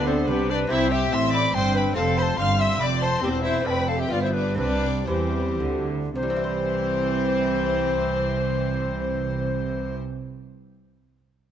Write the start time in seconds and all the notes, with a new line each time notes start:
Already playing: D2 D3 B3 D4 G4
0.06 C4 A4 C5
0.27 C2 C3 B3 D4 G4 B4
0.48 D4 C5 D5
0.55 B4
0.67 C2 C3 C4 E4 G4 C5 E5
0.91 G4 E5 G5
1.12 A1 A2 C4 E5 C6 E6
1.33 D5 B5 D6
1.54 G1 G2 C4 C5 G5 C6
1.75 B4 G5 B5
1.93 F1 F2 A3 C4 F4 A4 F5 A5
1.97 F2
2.17 C5 B5 C6
2.22 A5
2.37 G1 G2 C4 F5 C6 F6
2.58 E5 C6 E6
2.79 F1 F2 D5 B5 D6
3.00 C5 A5 C6
3.20 E1 E2 C4 G4 C5
3.44 E4 C5 E5
3.61 A3 C4 D4
3.65 F1 F2 C4 B4 A5 B5
3.70 G5
3.87 A4 F5 A5
3.99 G4 E5 G5
4.08 G1 G2 B3 F4
4.12 G2 D5 F5
4.21 E4 C5 E5
4.34 D4 B4 D5
4.54 C3 G3 C4 D4 E4 B4 D5
4.59 C2
5.06 E2 E3 G3 C4 G4 C5
5.60 D2 D3
6.15 C2 C3 E3 C4 C5
6.23 G3
6.30 C4
6.37 E4
6.44 C5